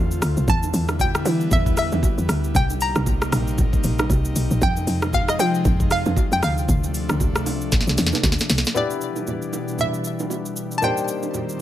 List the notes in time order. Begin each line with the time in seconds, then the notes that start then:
Already playing: E2 D3 A3 C4 F4
0.11 shaker
0.22 D2, cross-stick, open hi-hat, shaker
0.37 C2, shaker
0.48 E2 D3 G3 B3 E4 A5, kick, low conga, shaker
0.63 low bongo, shaker
0.74 E2, open hi-hat, shaker
0.88 cross-stick, low bongo, shaker
0.99 G5, kick, high bongo, low conga, shaker
1.15 cross-stick, shaker
1.25 E3, open hi-hat, low bongo, shaker
1.41 shaker
1.51 E2 E5, kick, low conga, shaker
1.66 kick, shaker
1.77 E5, cross-stick, open hi-hat, shaker
1.92 E2, low bongo, shaker
2.03 kick, high bongo, shaker
2.18 E2, shaker
2.29 D2, cross-stick, open hi-hat, shaker
2.44 shaker
2.55 C2 C3 A#3 D#4 G5, kick, low conga, shaker
2.70 low bongo, shaker
2.81 A#5, open hi-hat, shaker
2.95 C2, cross-stick, low bongo, shaker
3.06 kick, high bongo, low conga, shaker
3.22 cross-stick, shaker
3.32 A#1, cross-stick, open hi-hat, low bongo, shaker
3.47 shaker
3.58 kick, low conga, shaker
3.73 kick, shaker
3.84 A#1, open hi-hat, shaker
3.99 cross-stick, low bongo, shaker
4.10 C2, kick, high bongo, shaker
4.25 shaker
4.36 B1, open hi-hat, shaker
4.51 A#1, shaker
4.61 F2 C3 F3 G#3 G5, kick, low conga, shaker
4.77 low bongo, shaker
4.87 F2, open hi-hat, shaker
5.02 cross-stick, low bongo, shaker
5.13 F5, kick, high bongo, low conga, shaker
5.28 D#5, cross-stick, shaker
5.39 F3 G5, open hi-hat, low bongo, shaker
5.54 shaker
5.65 F2, kick, low conga, shaker
5.80 kick, shaker
5.91 F5, cross-stick, open hi-hat, shaker
6.06 F2, low bongo, shaker
6.16 kick, high bongo, shaker
6.32 F2 G5, shaker
6.43 D2 C3 A3 D4 F5, cross-stick, open hi-hat, shaker
6.58 shaker
6.68 D2, kick, low conga, shaker
6.84 low bongo, shaker
6.94 open hi-hat, shaker
7.09 D2, cross-stick, low bongo, shaker
7.20 kick, high bongo, low conga, shaker
7.35 cross-stick, shaker
7.46 C2, open hi-hat, low bongo, shaker
7.61 shaker
7.72 kick, snare, low conga, shaker
7.81 snare
7.87 C2, snare, shaker
7.98 E2, snare, open hi-hat, shaker
8.06 snare
8.12 snare, low bongo, shaker
8.23 D2, kick, snare, high bongo, shaker
8.32 snare
8.39 snare, shaker
8.50 C2, snare, open hi-hat, shaker
8.58 snare
8.65 snare, shaker
8.74 B2 E3 G3 B3 D4 E4 G4 B4 D5, low conga, shaker
8.90 shaker
9.01 shaker
9.16 low bongo, shaker
9.27 high bongo, low conga, shaker
9.42 shaker
9.53 low bongo, shaker
9.68 shaker
9.79 E5, low conga, shaker
9.94 shaker
10.04 shaker
10.19 low bongo, shaker
10.30 high bongo, shaker
10.45 shaker
10.56 shaker
10.71 shaker
10.78 A#3 D4 A5
10.82 A#2 D#3 C4 D#4 G4 C5 G5, low conga, shaker
10.97 shaker
11.08 shaker
11.23 low bongo, shaker
11.34 high bongo, low conga, shaker
11.49 shaker